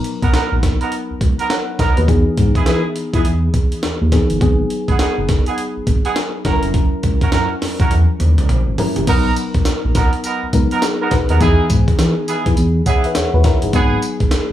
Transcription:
Already playing: fm electric piano F#3 B3 D#4 A#4
0.04 closed hi-hat
0.22 analog synth bass B1, horn section B3 D#4 F#4 A#4, kick, closed hi-hat
0.33 analog synth bass A#1, horn section B3 D#4 F#4 A#4, snare, closed hi-hat
0.52 analog synth bass A#1
0.63 kick, snare, closed hi-hat
0.80 horn section B3 D#4 F#4 A#4, closed hi-hat
0.92 closed hi-hat
1.10 analog synth bass C#2
1.21 analog synth bass C#2, kick, closed hi-hat
1.38 horn section B3 D#4 F#4 A#4, closed hi-hat
1.50 fm electric piano C#5 F#5, snare, closed hi-hat
1.79 analog synth bass B1, horn section B3 D#4 F#4 A#4, fm electric piano A#4 D#5, kick, snare, closed hi-hat
1.97 analog synth bass D#2, fm electric piano F#4 B4, closed hi-hat
2.08 analog synth bass E2, fm electric piano E3 B3 D#4 G#4, kick, closed hi-hat
2.37 analog synth bass G#2, kick, closed hi-hat
2.55 horn section B3 D#4 E4 G#4, kick, closed hi-hat
2.66 analog synth bass E3, horn section B3 D#4 E4 G#4, snare, closed hi-hat
2.96 analog synth bass E3, closed hi-hat
3.13 analog synth bass E3, horn section B3 D#4 E4 G#4, kick, closed hi-hat
3.25 analog synth bass E2, closed hi-hat
3.54 kick, closed hi-hat
3.72 closed hi-hat
3.83 analog synth bass D#2, snare, closed hi-hat
4.01 analog synth bass D#2
4.12 fm electric piano E3 B3 D#4 G#4, kick, snare, closed hi-hat
4.30 analog synth bass G1, closed hi-hat
4.41 analog synth bass G#1, fm electric piano F#3 B3 D#4 G#4, kick, closed hi-hat
4.70 closed hi-hat
4.88 analog synth bass G#1, horn section B3 D#4 F#4 G#4, kick, closed hi-hat
4.99 analog synth bass F#1, horn section B3 D#4 F#4 G#4, snare, closed hi-hat
5.18 analog synth bass F#1
5.29 kick, snare, closed hi-hat
5.46 horn section B3 D#4 F#4 G#4, closed hi-hat
5.58 closed hi-hat
5.77 analog synth bass G#1
5.87 analog synth bass G#1, kick, closed hi-hat
6.04 horn section B3 D#4 F#4 G#4, closed hi-hat
6.16 snare, closed hi-hat
6.45 analog synth bass F#1, fm electric piano F#3 C#4 E4 A4, horn section C#4 E4 F#4 A#4, kick, snare, closed hi-hat
6.53 fm electric piano A#4
6.63 analog synth bass F1, closed hi-hat
6.74 analog synth bass F#1, kick, closed hi-hat
7.03 analog synth bass C#2, kick, closed hi-hat
7.21 horn section C#4 E4 F#4 A#4, kick, closed hi-hat
7.32 analog synth bass F#2, horn section C#4 E4 F#4 A#4, snare, closed hi-hat
7.62 analog synth bass F#2, snare, open hi-hat
7.79 analog synth bass F#2, horn section C#4 E4 F#4 A#4, kick, closed hi-hat
7.91 analog synth bass E2, closed hi-hat, high tom
8.20 analog synth bass D#2, closed hi-hat, mid tom
8.38 analog synth bass C#2, closed hi-hat, mid tom
8.49 analog synth bass A#1, closed hi-hat, mid tom
8.68 analog synth bass G#1
8.78 fm electric piano F#3 C#4 E4 A#4, floor tom, open hi-hat
8.96 analog synth bass F#1, closed hi-hat, floor tom
9.07 analog synth bass B1, fm electric piano F#3 B3 D#4 A#4, horn section B3 D#4 F#4 A#4, kick, closed hi-hat, crash, tambourine
9.36 closed hi-hat, tambourine
9.54 analog synth bass B1, kick, closed hi-hat
9.65 analog synth bass A#1, snare, closed hi-hat, tambourine
9.85 analog synth bass A#1
9.95 horn section B3 D#4 F#4 A#4, kick, snare, closed hi-hat, tambourine
10.13 closed hi-hat
10.24 horn section B3 D#4 F#4 A#4, closed hi-hat, tambourine
10.43 analog synth bass C#2
10.53 analog synth bass C#2, fm electric piano F#3 B3 D#4 A#4, kick, closed hi-hat, tambourine
10.71 horn section B3 D#4 F#4 A#4, closed hi-hat
10.82 fm electric piano D#4 G#4, snare, closed hi-hat, tambourine
11.00 horn section B3 D#4 F#4 A#4, fm electric piano D#4 A#4
11.11 analog synth bass B1, fm electric piano F#4 B4, kick, snare, closed hi-hat
11.29 analog synth bass D#2, horn section B3 D#4 F#4 A#4, fm electric piano A#4 D#5, closed hi-hat
11.40 analog synth bass E2, fm electric piano E3 B3 D#4 G#4, horn section B3 D#4 E4 G#4, kick, closed hi-hat, tambourine
11.70 analog synth bass G#2, kick, closed hi-hat, tambourine
11.88 kick, closed hi-hat
11.99 analog synth bass E3, snare, closed hi-hat, tambourine
12.28 analog synth bass E3, horn section B3 D#4 E4 G#4, closed hi-hat, tambourine
12.46 analog synth bass E3, kick, closed hi-hat
12.57 analog synth bass E2, closed hi-hat, tambourine
12.86 horn section B3 D#4 E4 G#4, fm electric piano C#5 F#5, kick, closed hi-hat, tambourine
13.04 fm electric piano B4 E5, closed hi-hat
13.15 analog synth bass D#2, fm electric piano G#4 C#5, snare, closed hi-hat, tambourine
13.34 analog synth bass D#2, fm electric piano F#4 B4
13.44 fm electric piano E4 A#4, kick, snare, closed hi-hat
13.62 analog synth bass G1, fm electric piano D#4 G#4, closed hi-hat
13.73 analog synth bass G#1, fm electric piano F#3 B3 D#4 G#4, horn section B3 D#4 F#4 G#4, kick, closed hi-hat, tambourine
14.02 closed hi-hat, tambourine
14.20 analog synth bass G#1, kick, closed hi-hat
14.31 analog synth bass F#1, snare, closed hi-hat, tambourine

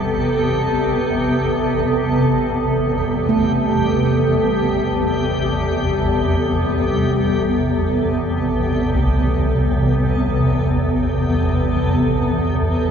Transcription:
Already playing: synth drone A1 E2, ambient pad C3 B3 A4, synth texture G3 G4
3.29 kettle gongs A3
8.94 kettle gongs C2
9.52 synth texture G3 G4

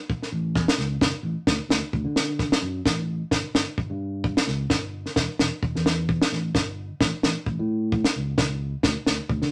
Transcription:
0.10 kick
0.23 snare
0.32 fingered electric bass A1
0.55 fingered electric bass E2, kick, snare
0.68 snare
0.78 fingered electric bass C#2, snare
1.01 fingered electric bass F#1, kick, snare
1.23 fingered electric bass A1
1.47 fingered electric bass D2, kick, snare
1.69 fingered electric bass D2, snare
1.93 fingered electric bass D2, kick
2.05 fingered electric bass D3
2.16 snare
2.39 kick, snare
2.52 snare
2.62 fingered electric bass F#2
2.86 fingered electric bass A1, kick, snare
3.31 fingered electric bass G1, kick, snare
3.54 fingered electric bass G1, snare
3.78 fingered electric bass G1, kick
3.90 fingered electric bass G2
4.24 kick
4.37 snare
4.47 fingered electric bass C#2, snare
4.70 fingered electric bass G1, kick, snare
5.06 snare
5.16 fingered electric bass E1, kick, snare
5.39 fingered electric bass E1, snare
5.62 fingered electric bass E1, kick
5.75 fingered electric bass E2, snare
5.86 snare
6.09 kick
6.22 snare
6.32 fingered electric bass A1, snare
6.55 fingered electric bass G1, kick, snare
7.00 fingered electric bass A1, kick, snare
7.23 fingered electric bass A1, snare
7.46 fingered electric bass A1, kick
7.59 fingered electric bass A2
7.92 kick
8.04 snare
8.16 fingered electric bass C#2
8.38 fingered electric bass C#2, kick, snare
8.83 fingered electric bass D2, kick, snare
9.07 fingered electric bass D2, snare
9.29 fingered electric bass D2, kick
9.42 fingered electric bass D3, snare

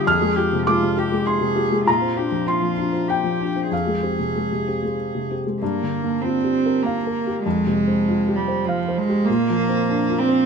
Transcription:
0.07 felt piano F2 F6, cello G#4
0.22 felt piano G#3
0.36 felt piano F4 G4, cello G4
0.53 felt piano C3
0.67 felt piano G#3 D6, cello F4
0.82 felt piano C3
0.96 felt piano F4 G4, cello G4
1.12 felt piano G#3
1.26 cello G#4, felt piano C6
1.41 felt piano C3
1.56 felt piano F4 G4
1.71 felt piano G#3
1.85 felt piano A#2 A#5, cello F4
2.02 felt piano C4
2.16 felt piano D4 F4, cello G4
2.32 felt piano F3
2.46 felt piano C4 C6, cello F4
2.62 felt piano F3
2.78 felt piano D4 F4
2.93 felt piano C4
3.08 cello G4, felt piano G5
3.24 felt piano F3
3.40 felt piano D4 F4
3.56 felt piano C4
3.70 felt piano F2 F5, cello G#4
3.87 felt piano G#3
4.03 felt piano C4 G4
4.19 felt piano C3
4.36 felt piano G#3
4.52 felt piano C3
4.67 felt piano C4 G4
4.83 felt piano G#3
5.15 felt piano C3
5.30 felt piano C4 G4
5.46 felt piano G#3
5.61 felt piano G2, cello A#3
5.82 felt piano D3
6.03 felt piano A#3
6.22 cello C4, felt piano F4
6.44 felt piano G4
6.66 felt piano A#4
6.83 cello A#3, felt piano F5
7.07 felt piano A#4
7.27 felt piano G4
7.43 felt piano F2, cello G#3
7.67 felt piano C3
7.87 felt piano C4
8.08 felt piano F4
8.28 felt piano G4
8.36 cello G3
8.48 felt piano C5
8.65 cello F3, felt piano F5
8.88 felt piano C5
8.98 cello G#3
9.09 felt piano G4
9.26 felt piano A#2, cello A#3
9.50 felt piano F3
9.69 felt piano C4
9.89 felt piano D4
10.09 felt piano F4
10.18 cello C4
10.29 felt piano C5

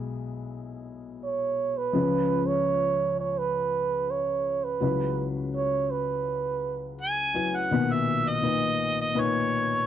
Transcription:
Already playing: upright piano B1 B2 G#3 E4 D#5
1.24 french horn C#5
1.78 french horn B4
1.93 upright piano C#2 C#3 F3 C#4 B4
2.47 french horn C#5
3.20 french horn C#5
3.38 french horn B4
4.11 french horn C#5
4.64 french horn B4
4.80 upright piano C#2 C#3 F#3 E4 B4
5.55 french horn C#5
5.91 french horn B4
7.01 harmonica G#5
7.34 upright piano F#3 E4 B4
7.56 harmonica F#5
7.71 upright piano B1 A#2 B2 D#3 B4
7.93 harmonica E5
8.29 harmonica D#5
8.42 upright piano A#2 D#4 B4
9.01 harmonica D#5
9.15 upright piano A#2 D#4 B4
9.20 harmonica C#5

